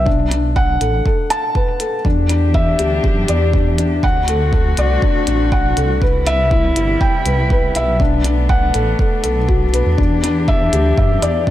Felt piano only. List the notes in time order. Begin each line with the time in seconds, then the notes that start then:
0.06 D4
0.31 D4
0.56 F#5
0.81 A4
1.06 A4
1.30 A5
1.55 B4
1.80 A4
2.05 D4
2.29 D4
2.54 E5
2.79 G4
3.04 G4
3.29 D5
3.54 D4
3.79 D4
4.04 F#5
4.29 A4
4.53 A4
4.78 D5
5.03 D4
5.28 D4
5.52 F#5
5.77 A4
6.02 B4
6.27 E5
6.52 E4
6.77 E4
7.01 G5
7.26 B4
7.51 B4
7.76 E5
8.00 D4
8.24 D4
8.49 F#5
8.74 A4
8.99 A4
9.24 A4
9.49 F#4
9.73 B4
9.98 D4
10.23 D4
10.48 E5
10.73 G4
10.98 E5
11.22 D5